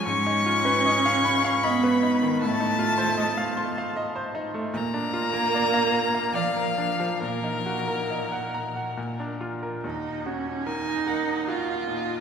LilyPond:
<<
  \new Staff \with { instrumentName = "Violin" } { \time 3/4 \key ees \minor \tempo 4 = 75 des'''2 ces'''4 | a''2 r4 | bes''2 f''4 | bes'2~ bes'8 r8 |
r4 aes''8 ges''8 f''8 ees''8 | }
  \new Staff \with { instrumentName = "Grand piano" } { \time 3/4 \key ees \minor aes,16 ees'16 f'16 ces''16 ees''16 f''16 ces'''16 f''16 ees''16 ces''16 ees'16 ees16 | a,16 ees'16 f'16 c''16 ees''16 f''16 c'''16 f''16 ees''16 c''16 ees'16 a16 | bes,16 d'16 f'16 bes'16 d''16 f''16 bes''16 f''16 d''16 bes'16 d'16 f16 | bes,16 ees'16 ges'16 bes'16 ees''16 ges''16 bes''16 ges''16 bes,16 d'16 f'16 bes'16 |
ees,8 ges'8 bes'8 bes8 ges'8 bes,8 | }
  \new Staff \with { instrumentName = "Cello" } { \time 3/4 \key ees \minor des'2 ces'4 | a2 r4 | bes2 f4 | bes,2~ bes,8 r8 |
ees'8 des'8 ees'4 f'4 | }
>>